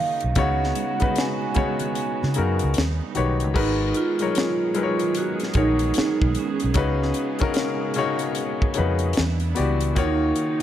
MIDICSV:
0, 0, Header, 1, 7, 480
1, 0, Start_track
1, 0, Tempo, 800000
1, 217, Time_signature, 4, 2, 24, 8
1, 6375, End_track
2, 0, Start_track
2, 0, Title_t, "Vibraphone"
2, 0, Program_c, 0, 11
2, 0, Note_on_c, 0, 77, 96
2, 241, Note_on_c, 0, 78, 101
2, 243, Note_off_c, 0, 77, 0
2, 712, Note_on_c, 0, 80, 78
2, 723, Note_off_c, 0, 78, 0
2, 1641, Note_off_c, 0, 80, 0
2, 2145, Note_on_c, 0, 63, 88
2, 2382, Note_on_c, 0, 65, 100
2, 2388, Note_off_c, 0, 63, 0
2, 3076, Note_off_c, 0, 65, 0
2, 3105, Note_on_c, 0, 66, 98
2, 3211, Note_off_c, 0, 66, 0
2, 3343, Note_on_c, 0, 63, 96
2, 3834, Note_off_c, 0, 63, 0
2, 3834, Note_on_c, 0, 61, 88
2, 4761, Note_off_c, 0, 61, 0
2, 5980, Note_on_c, 0, 63, 94
2, 6375, Note_off_c, 0, 63, 0
2, 6375, End_track
3, 0, Start_track
3, 0, Title_t, "Grand piano"
3, 0, Program_c, 1, 0
3, 0, Control_c, 1, 64, 127
3, 0, Note_on_c, 1, 51, 66
3, 0, Note_on_c, 1, 58, 60
3, 0, Note_on_c, 1, 63, 57
3, 0, Note_on_c, 1, 66, 55
3, 0, Note_on_c, 1, 72, 68
3, 0, Note_on_c, 1, 73, 87
3, 0, Note_on_c, 1, 75, 73
3, 181, Note_off_c, 1, 51, 0
3, 183, Note_off_c, 1, 58, 0
3, 186, Note_off_c, 1, 63, 0
3, 187, Note_off_c, 1, 66, 0
3, 190, Note_off_c, 1, 75, 0
3, 215, Note_on_c, 1, 49, 96
3, 218, Note_on_c, 1, 59, 82
3, 221, Note_on_c, 1, 63, 82
3, 224, Note_on_c, 1, 66, 87
3, 225, Control_c, 1, 64, 0
3, 227, Note_off_c, 1, 72, 0
3, 227, Note_off_c, 1, 73, 0
3, 229, Note_on_c, 1, 73, 106
3, 341, Control_c, 1, 64, 127
3, 575, Note_off_c, 1, 49, 0
3, 577, Note_off_c, 1, 59, 0
3, 579, Note_off_c, 1, 63, 0
3, 580, Note_off_c, 1, 66, 0
3, 583, Note_off_c, 1, 73, 0
3, 596, Note_on_c, 1, 49, 69
3, 601, Note_on_c, 1, 59, 66
3, 607, Note_on_c, 1, 63, 73
3, 611, Note_on_c, 1, 66, 66
3, 612, Note_on_c, 1, 71, 83
3, 912, Note_off_c, 1, 49, 0
3, 914, Note_off_c, 1, 59, 0
3, 917, Note_off_c, 1, 63, 0
3, 920, Note_off_c, 1, 66, 0
3, 920, Note_off_c, 1, 71, 0
3, 928, Note_on_c, 1, 49, 83
3, 932, Note_on_c, 1, 59, 73
3, 934, Note_on_c, 1, 63, 71
3, 941, Note_on_c, 1, 66, 72
3, 943, Note_on_c, 1, 73, 93
3, 1388, Note_off_c, 1, 49, 0
3, 1390, Note_off_c, 1, 59, 0
3, 1391, Note_off_c, 1, 63, 0
3, 1394, Note_off_c, 1, 66, 0
3, 1395, Note_off_c, 1, 73, 0
3, 1413, Note_on_c, 1, 49, 75
3, 1417, Note_on_c, 1, 59, 62
3, 1421, Note_on_c, 1, 63, 64
3, 1425, Note_on_c, 1, 66, 70
3, 1427, Note_on_c, 1, 70, 75
3, 1655, Note_off_c, 1, 49, 0
3, 1657, Note_off_c, 1, 59, 0
3, 1659, Note_off_c, 1, 63, 0
3, 1661, Note_off_c, 1, 66, 0
3, 1662, Note_off_c, 1, 70, 0
3, 1664, Control_c, 1, 64, 0
3, 1783, Control_c, 1, 64, 127
3, 1888, Note_on_c, 1, 51, 72
3, 1889, Note_on_c, 1, 63, 60
3, 1890, Note_on_c, 1, 66, 67
3, 1895, Note_on_c, 1, 67, 63
3, 1900, Note_on_c, 1, 71, 60
3, 1901, Note_on_c, 1, 73, 82
3, 2115, Note_off_c, 1, 63, 0
3, 2120, Note_off_c, 1, 51, 0
3, 2121, Note_off_c, 1, 66, 0
3, 2123, Note_on_c, 1, 56, 100
3, 2124, Note_off_c, 1, 67, 0
3, 2124, Note_on_c, 1, 63, 85
3, 2126, Note_off_c, 1, 71, 0
3, 2127, Note_off_c, 1, 73, 0
3, 2130, Note_on_c, 1, 66, 90
3, 2135, Note_on_c, 1, 70, 79
3, 2136, Note_on_c, 1, 71, 106
3, 2145, Control_c, 1, 64, 0
3, 2245, Control_c, 1, 64, 127
3, 2490, Note_off_c, 1, 56, 0
3, 2490, Note_off_c, 1, 63, 0
3, 2493, Note_off_c, 1, 66, 0
3, 2496, Note_off_c, 1, 70, 0
3, 2496, Note_off_c, 1, 71, 0
3, 2517, Note_on_c, 1, 56, 70
3, 2522, Note_on_c, 1, 63, 70
3, 2528, Note_on_c, 1, 54, 66
3, 2533, Note_on_c, 1, 70, 71
3, 2533, Note_on_c, 1, 73, 83
3, 2832, Note_off_c, 1, 56, 0
3, 2835, Note_off_c, 1, 63, 0
3, 2838, Note_off_c, 1, 54, 0
3, 2840, Note_off_c, 1, 70, 0
3, 2841, Note_off_c, 1, 73, 0
3, 2844, Note_on_c, 1, 56, 81
3, 2847, Note_on_c, 1, 63, 72
3, 2851, Note_on_c, 1, 54, 70
3, 2854, Note_on_c, 1, 70, 73
3, 2858, Note_on_c, 1, 71, 66
3, 2898, Note_on_c, 1, 73, 87
3, 2907, Note_off_c, 1, 71, 0
3, 3305, Note_off_c, 1, 56, 0
3, 3307, Note_off_c, 1, 63, 0
3, 3309, Note_off_c, 1, 54, 0
3, 3310, Note_off_c, 1, 70, 0
3, 3328, Note_on_c, 1, 56, 65
3, 3331, Note_on_c, 1, 63, 61
3, 3333, Note_off_c, 1, 73, 0
3, 3334, Note_on_c, 1, 66, 60
3, 3338, Note_on_c, 1, 70, 60
3, 3342, Note_on_c, 1, 73, 76
3, 4015, Note_off_c, 1, 56, 0
3, 4017, Note_off_c, 1, 63, 0
3, 4018, Note_off_c, 1, 66, 0
3, 4020, Note_off_c, 1, 70, 0
3, 4022, Note_off_c, 1, 73, 0
3, 4045, Note_on_c, 1, 49, 100
3, 4052, Note_on_c, 1, 61, 85
3, 4053, Note_on_c, 1, 63, 84
3, 4056, Note_on_c, 1, 66, 86
3, 4064, Control_c, 1, 64, 0
3, 4064, Note_on_c, 1, 71, 107
3, 4166, Control_c, 1, 64, 127
3, 4410, Note_off_c, 1, 49, 0
3, 4414, Note_off_c, 1, 61, 0
3, 4414, Note_off_c, 1, 63, 0
3, 4416, Note_off_c, 1, 66, 0
3, 4420, Note_off_c, 1, 71, 0
3, 4439, Note_on_c, 1, 49, 95
3, 4444, Note_on_c, 1, 61, 87
3, 4450, Note_on_c, 1, 63, 80
3, 4454, Note_on_c, 1, 66, 86
3, 4456, Note_on_c, 1, 70, 98
3, 4753, Note_off_c, 1, 49, 0
3, 4756, Note_off_c, 1, 61, 0
3, 4759, Note_off_c, 1, 63, 0
3, 4761, Note_off_c, 1, 66, 0
3, 4762, Note_off_c, 1, 70, 0
3, 4774, Note_on_c, 1, 49, 97
3, 4779, Note_on_c, 1, 61, 87
3, 4784, Note_on_c, 1, 63, 91
3, 4786, Note_on_c, 1, 66, 90
3, 4789, Note_on_c, 1, 73, 107
3, 5231, Note_off_c, 1, 49, 0
3, 5233, Note_off_c, 1, 61, 0
3, 5236, Note_off_c, 1, 63, 0
3, 5237, Note_off_c, 1, 66, 0
3, 5238, Note_off_c, 1, 73, 0
3, 5246, Note_on_c, 1, 49, 77
3, 5251, Note_on_c, 1, 61, 70
3, 5258, Note_on_c, 1, 63, 72
3, 5261, Note_on_c, 1, 66, 67
3, 5265, Note_on_c, 1, 71, 87
3, 5492, Note_off_c, 1, 49, 0
3, 5494, Note_off_c, 1, 61, 0
3, 5498, Note_off_c, 1, 63, 0
3, 5499, Note_off_c, 1, 66, 0
3, 5501, Note_off_c, 1, 71, 0
3, 5504, Control_c, 1, 64, 0
3, 5627, Control_c, 1, 64, 127
3, 5727, Note_on_c, 1, 52, 70
3, 5730, Note_on_c, 1, 59, 72
3, 5733, Note_on_c, 1, 66, 70
3, 5738, Note_on_c, 1, 67, 74
3, 5740, Note_on_c, 1, 74, 82
3, 5960, Note_off_c, 1, 52, 0
3, 5961, Note_off_c, 1, 59, 0
3, 5963, Note_off_c, 1, 66, 0
3, 5965, Note_off_c, 1, 67, 0
3, 5966, Note_off_c, 1, 74, 0
3, 5972, Note_on_c, 1, 51, 96
3, 5979, Note_on_c, 1, 58, 91
3, 5979, Note_on_c, 1, 65, 88
3, 5983, Note_on_c, 1, 66, 90
3, 5984, Control_c, 1, 64, 0
3, 5987, Note_on_c, 1, 73, 107
3, 6105, Control_c, 1, 64, 127
3, 6334, Note_off_c, 1, 51, 0
3, 6337, Note_off_c, 1, 58, 0
3, 6338, Note_off_c, 1, 65, 0
3, 6340, Note_off_c, 1, 66, 0
3, 6342, Note_off_c, 1, 73, 0
3, 6375, End_track
4, 0, Start_track
4, 0, Title_t, "String section"
4, 0, Program_c, 2, 48
4, 0, Note_on_c, 2, 49, 75
4, 0, Note_on_c, 2, 51, 76
4, 0, Note_on_c, 2, 58, 66
4, 0, Note_on_c, 2, 63, 85
4, 196, Note_off_c, 2, 58, 0
4, 196, Note_off_c, 2, 63, 0
4, 197, Note_off_c, 2, 51, 0
4, 210, Note_on_c, 2, 56, 68
4, 210, Note_on_c, 2, 66, 78
4, 217, Note_on_c, 2, 59, 68
4, 1639, Note_off_c, 2, 56, 0
4, 1639, Note_off_c, 2, 66, 0
4, 1642, Note_off_c, 2, 59, 0
4, 1652, Note_on_c, 2, 59, 61
4, 1652, Note_on_c, 2, 63, 70
4, 1653, Note_on_c, 2, 55, 62
4, 2114, Note_off_c, 2, 49, 0
4, 2129, Note_off_c, 2, 59, 0
4, 2130, Note_off_c, 2, 55, 0
4, 2130, Note_off_c, 2, 63, 0
4, 2135, Note_on_c, 2, 59, 71
4, 2136, Note_on_c, 2, 51, 78
4, 2138, Note_on_c, 2, 68, 82
4, 2139, Note_on_c, 2, 56, 65
4, 4037, Note_off_c, 2, 51, 0
4, 4055, Note_on_c, 2, 49, 78
4, 5473, Note_off_c, 2, 68, 0
4, 5474, Note_off_c, 2, 56, 0
4, 5481, Note_off_c, 2, 49, 0
4, 5504, Note_on_c, 2, 62, 67
4, 5506, Note_on_c, 2, 55, 62
4, 5507, Note_on_c, 2, 64, 74
4, 5952, Note_off_c, 2, 59, 0
4, 5975, Note_off_c, 2, 62, 0
4, 5977, Note_off_c, 2, 55, 0
4, 5977, Note_off_c, 2, 64, 0
4, 5978, Note_on_c, 2, 51, 74
4, 5981, Note_on_c, 2, 49, 73
4, 5981, Note_on_c, 2, 58, 66
4, 5984, Note_on_c, 2, 63, 91
4, 6375, Note_off_c, 2, 49, 0
4, 6375, Note_off_c, 2, 51, 0
4, 6375, Note_off_c, 2, 58, 0
4, 6375, Note_off_c, 2, 63, 0
4, 6375, End_track
5, 0, Start_track
5, 0, Title_t, "Fingered electric bass"
5, 0, Program_c, 3, 33
5, 145, Note_on_c, 3, 35, 82
5, 224, Note_off_c, 3, 35, 0
5, 224, Note_on_c, 3, 37, 97
5, 429, Note_off_c, 3, 37, 0
5, 1342, Note_on_c, 3, 49, 86
5, 1413, Note_off_c, 3, 49, 0
5, 1431, Note_on_c, 3, 42, 90
5, 1556, Note_off_c, 3, 42, 0
5, 1582, Note_on_c, 3, 37, 94
5, 1653, Note_off_c, 3, 37, 0
5, 1670, Note_on_c, 3, 39, 85
5, 1795, Note_off_c, 3, 39, 0
5, 1908, Note_on_c, 3, 35, 78
5, 2062, Note_off_c, 3, 35, 0
5, 2062, Note_on_c, 3, 37, 75
5, 2133, Note_off_c, 3, 37, 0
5, 2143, Note_on_c, 3, 32, 103
5, 2348, Note_off_c, 3, 32, 0
5, 3338, Note_on_c, 3, 34, 103
5, 3545, Note_off_c, 3, 34, 0
5, 3739, Note_on_c, 3, 35, 85
5, 3811, Note_off_c, 3, 35, 0
5, 3985, Note_on_c, 3, 35, 85
5, 4062, Note_off_c, 3, 35, 0
5, 4062, Note_on_c, 3, 37, 97
5, 4267, Note_off_c, 3, 37, 0
5, 5274, Note_on_c, 3, 41, 101
5, 5474, Note_off_c, 3, 41, 0
5, 5515, Note_on_c, 3, 40, 103
5, 5715, Note_off_c, 3, 40, 0
5, 5755, Note_on_c, 3, 37, 83
5, 5955, Note_off_c, 3, 37, 0
5, 5986, Note_on_c, 3, 39, 99
5, 6189, Note_off_c, 3, 39, 0
5, 6375, End_track
6, 0, Start_track
6, 0, Title_t, "Muted fingered electric bass strokes"
6, 3592, Note_on_c, 9, 29, 41
6, 3652, Note_off_c, 9, 29, 0
6, 6375, End_track
7, 0, Start_track
7, 0, Title_t, "Drums"
7, 123, Note_on_c, 9, 42, 50
7, 183, Note_off_c, 9, 42, 0
7, 212, Note_on_c, 9, 42, 91
7, 217, Note_on_c, 9, 36, 113
7, 224, Note_on_c, 9, 64, 76
7, 272, Note_off_c, 9, 42, 0
7, 277, Note_off_c, 9, 36, 0
7, 284, Note_off_c, 9, 64, 0
7, 383, Note_on_c, 9, 38, 39
7, 443, Note_off_c, 9, 38, 0
7, 452, Note_on_c, 9, 42, 61
7, 457, Note_on_c, 9, 63, 70
7, 512, Note_off_c, 9, 42, 0
7, 517, Note_off_c, 9, 63, 0
7, 599, Note_on_c, 9, 42, 51
7, 612, Note_on_c, 9, 36, 96
7, 617, Note_on_c, 9, 63, 68
7, 659, Note_off_c, 9, 42, 0
7, 672, Note_off_c, 9, 36, 0
7, 677, Note_off_c, 9, 63, 0
7, 694, Note_on_c, 9, 42, 90
7, 710, Note_on_c, 9, 38, 113
7, 754, Note_off_c, 9, 42, 0
7, 770, Note_off_c, 9, 38, 0
7, 849, Note_on_c, 9, 62, 29
7, 909, Note_off_c, 9, 62, 0
7, 927, Note_on_c, 9, 42, 61
7, 938, Note_on_c, 9, 63, 65
7, 939, Note_on_c, 9, 36, 94
7, 987, Note_off_c, 9, 42, 0
7, 998, Note_off_c, 9, 63, 0
7, 999, Note_off_c, 9, 36, 0
7, 1076, Note_on_c, 9, 42, 54
7, 1084, Note_on_c, 9, 64, 61
7, 1136, Note_off_c, 9, 42, 0
7, 1144, Note_off_c, 9, 64, 0
7, 1171, Note_on_c, 9, 62, 34
7, 1172, Note_on_c, 9, 42, 72
7, 1231, Note_off_c, 9, 62, 0
7, 1232, Note_off_c, 9, 42, 0
7, 1336, Note_on_c, 9, 62, 29
7, 1339, Note_on_c, 9, 38, 35
7, 1396, Note_off_c, 9, 62, 0
7, 1399, Note_off_c, 9, 38, 0
7, 1405, Note_on_c, 9, 42, 68
7, 1465, Note_off_c, 9, 42, 0
7, 1556, Note_on_c, 9, 42, 51
7, 1616, Note_off_c, 9, 42, 0
7, 1644, Note_on_c, 9, 42, 75
7, 1669, Note_on_c, 9, 38, 109
7, 1704, Note_off_c, 9, 42, 0
7, 1729, Note_off_c, 9, 38, 0
7, 1808, Note_on_c, 9, 62, 29
7, 1868, Note_off_c, 9, 62, 0
7, 1890, Note_on_c, 9, 42, 60
7, 1899, Note_on_c, 9, 64, 66
7, 1950, Note_off_c, 9, 42, 0
7, 1959, Note_off_c, 9, 64, 0
7, 2040, Note_on_c, 9, 42, 48
7, 2100, Note_off_c, 9, 42, 0
7, 2133, Note_on_c, 9, 49, 105
7, 2134, Note_on_c, 9, 36, 112
7, 2193, Note_off_c, 9, 49, 0
7, 2194, Note_off_c, 9, 36, 0
7, 2366, Note_on_c, 9, 42, 64
7, 2426, Note_off_c, 9, 42, 0
7, 2514, Note_on_c, 9, 42, 51
7, 2574, Note_off_c, 9, 42, 0
7, 2611, Note_on_c, 9, 42, 92
7, 2627, Note_on_c, 9, 38, 112
7, 2671, Note_off_c, 9, 42, 0
7, 2687, Note_off_c, 9, 38, 0
7, 2847, Note_on_c, 9, 42, 59
7, 2907, Note_off_c, 9, 42, 0
7, 2996, Note_on_c, 9, 42, 55
7, 3056, Note_off_c, 9, 42, 0
7, 3087, Note_on_c, 9, 42, 78
7, 3147, Note_off_c, 9, 42, 0
7, 3238, Note_on_c, 9, 42, 39
7, 3259, Note_on_c, 9, 38, 36
7, 3298, Note_off_c, 9, 42, 0
7, 3319, Note_off_c, 9, 38, 0
7, 3322, Note_on_c, 9, 42, 79
7, 3331, Note_on_c, 9, 36, 96
7, 3382, Note_off_c, 9, 42, 0
7, 3391, Note_off_c, 9, 36, 0
7, 3475, Note_on_c, 9, 42, 52
7, 3535, Note_off_c, 9, 42, 0
7, 3563, Note_on_c, 9, 42, 74
7, 3588, Note_on_c, 9, 38, 113
7, 3623, Note_off_c, 9, 42, 0
7, 3648, Note_off_c, 9, 38, 0
7, 3729, Note_on_c, 9, 36, 97
7, 3789, Note_off_c, 9, 36, 0
7, 3808, Note_on_c, 9, 42, 61
7, 3868, Note_off_c, 9, 42, 0
7, 3958, Note_on_c, 9, 42, 49
7, 4018, Note_off_c, 9, 42, 0
7, 4045, Note_on_c, 9, 42, 98
7, 4054, Note_on_c, 9, 36, 127
7, 4105, Note_off_c, 9, 42, 0
7, 4114, Note_off_c, 9, 36, 0
7, 4216, Note_on_c, 9, 38, 35
7, 4276, Note_off_c, 9, 38, 0
7, 4284, Note_on_c, 9, 42, 60
7, 4344, Note_off_c, 9, 42, 0
7, 4432, Note_on_c, 9, 42, 52
7, 4449, Note_on_c, 9, 36, 94
7, 4492, Note_off_c, 9, 42, 0
7, 4509, Note_off_c, 9, 36, 0
7, 4524, Note_on_c, 9, 42, 93
7, 4540, Note_on_c, 9, 38, 118
7, 4584, Note_off_c, 9, 42, 0
7, 4600, Note_off_c, 9, 38, 0
7, 4763, Note_on_c, 9, 42, 62
7, 4823, Note_off_c, 9, 42, 0
7, 4914, Note_on_c, 9, 42, 55
7, 4974, Note_off_c, 9, 42, 0
7, 5009, Note_on_c, 9, 42, 78
7, 5069, Note_off_c, 9, 42, 0
7, 5171, Note_on_c, 9, 36, 91
7, 5231, Note_off_c, 9, 36, 0
7, 5243, Note_on_c, 9, 42, 80
7, 5303, Note_off_c, 9, 42, 0
7, 5392, Note_on_c, 9, 42, 46
7, 5452, Note_off_c, 9, 42, 0
7, 5479, Note_on_c, 9, 42, 72
7, 5505, Note_on_c, 9, 38, 122
7, 5539, Note_off_c, 9, 42, 0
7, 5565, Note_off_c, 9, 38, 0
7, 5638, Note_on_c, 9, 42, 37
7, 5698, Note_off_c, 9, 42, 0
7, 5734, Note_on_c, 9, 42, 65
7, 5794, Note_off_c, 9, 42, 0
7, 5883, Note_on_c, 9, 42, 50
7, 5943, Note_off_c, 9, 42, 0
7, 5977, Note_on_c, 9, 42, 92
7, 5980, Note_on_c, 9, 36, 115
7, 6037, Note_off_c, 9, 42, 0
7, 6040, Note_off_c, 9, 36, 0
7, 6213, Note_on_c, 9, 42, 67
7, 6273, Note_off_c, 9, 42, 0
7, 6375, End_track
0, 0, End_of_file